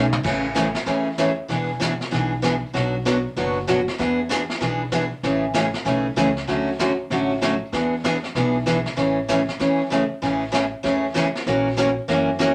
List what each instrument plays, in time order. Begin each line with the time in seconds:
Already playing: upright bass B1
0.13 mid tom
0.23 upright bass A1, steel-string acoustic guitar C#3 E3 A3 C#4 G#4, brush sweep, kick, snare, crash
0.55 steel-string acoustic guitar C#3 E3 A3 C#4 G#4, kick, snare, hi-hat pedal
0.75 snare
0.86 upright bass E2, steel-string acoustic guitar C#3 E3 A3 C#4 G#4, brush sweep, kick, snare
1.18 steel-string acoustic guitar C#3 E3 A3 C#4 G#4, kick, snare, hi-hat pedal
1.48 upright bass E1, steel-string acoustic guitar E3 B3 D4 G#4, brush sweep, kick, snare
1.80 steel-string acoustic guitar E3 B3 D4 G#4, kick, snare, hi-hat pedal
2.01 snare
2.11 upright bass B1, steel-string acoustic guitar E3 B3 D4 G#4, brush sweep, kick, snare
2.42 steel-string acoustic guitar E3 B3 D4 G#4, kick, snare, hi-hat pedal
2.73 upright bass B1, steel-string acoustic guitar B2 F#3 B3 D4 F#4, brush sweep, kick, snare
3.05 steel-string acoustic guitar B2 F#3 B3 D4 F#4, kick, snare, hi-hat pedal
3.36 upright bass F#1, steel-string acoustic guitar B2 F#3 B3 D4 F#4, brush sweep, kick, snare
3.67 steel-string acoustic guitar B2 F#3 B3 D4 F#4, kick, snare, hi-hat pedal
3.88 snare
3.98 upright bass E2, steel-string acoustic guitar E3 B3 D4 G#4, brush sweep, kick, snare
4.29 steel-string acoustic guitar E3 B3 D4 G#4, kick, snare, hi-hat pedal
4.50 snare
4.60 upright bass B1, steel-string acoustic guitar E3 B3 D4 G#4, brush sweep, kick, snare
4.92 steel-string acoustic guitar E3 B3 D4 G#4, kick, snare, hi-hat pedal
5.23 upright bass A1, steel-string acoustic guitar C#3 E3 A3 C#4 G#4, brush sweep, kick, snare
5.54 steel-string acoustic guitar C#3 E3 A3 C#4 G#4, kick, snare, hi-hat pedal
5.74 snare
5.85 upright bass B1, steel-string acoustic guitar C#3 E3 A3 C#4 G#4, brush sweep, kick, snare
6.16 upright bass C#2, steel-string acoustic guitar C#3 E3 A3 C#4 G#4, kick, snare, hi-hat pedal
6.37 snare
6.47 upright bass D2, steel-string acoustic guitar D3 F#3 A3 C#4 F#4, brush sweep, kick, snare
6.79 steel-string acoustic guitar D3 F#3 A3 C#4 F#4, kick, snare, hi-hat pedal
7.10 upright bass A1, steel-string acoustic guitar D3 F#3 A3 C#4 F#4, brush sweep, kick, snare
7.42 steel-string acoustic guitar D3 F#3 A3 C#4 F#4, kick, snare, hi-hat pedal
7.72 upright bass E2, steel-string acoustic guitar E3 B3 D4 G#4, brush sweep, kick, snare
8.04 steel-string acoustic guitar E3 B3 D4 G#4, kick, snare, hi-hat pedal
8.23 snare
8.35 upright bass B1, steel-string acoustic guitar E3 B3 D4 G#4, brush sweep, kick, snare
8.66 steel-string acoustic guitar E3 B3 D4 G#4, kick, snare, hi-hat pedal
8.86 snare
8.96 upright bass A1, steel-string acoustic guitar C#3 E3 A3 C#4 G#4, brush sweep, kick, snare
9.28 steel-string acoustic guitar C#3 E3 A3 C#4 G#4, kick, snare, hi-hat pedal
9.48 snare
9.59 upright bass E2, steel-string acoustic guitar C#3 E3 A3 C#4 G#4, brush sweep, kick, snare
9.90 steel-string acoustic guitar C#3 E3 A3 C#4 G#4, kick, snare, hi-hat pedal
10.22 upright bass A1, steel-string acoustic guitar C#3 E3 A3 C#4 G#4, brush sweep, kick, snare
10.52 steel-string acoustic guitar C#3 E3 A3 C#4 G#4, kick, snare, hi-hat pedal
10.83 upright bass E2, steel-string acoustic guitar C#3 E3 A3 C#4 G#4, brush sweep, kick, snare
11.14 steel-string acoustic guitar C#3 E3 A3 C#4 G#4, kick, snare, hi-hat pedal
11.35 snare
11.46 upright bass A#1, steel-string acoustic guitar E3 A#3 C#4 F#4 A#4, brush sweep, kick, snare
11.77 steel-string acoustic guitar E3 A#3 C#4 F#4 A#4, kick, snare, hi-hat pedal
12.08 upright bass F#2, steel-string acoustic guitar E3 A#3 C#4 F#4 A#4, brush sweep, kick, snare
12.39 steel-string acoustic guitar E3 A#3 C#4 F#4 A#4, kick, snare, hi-hat pedal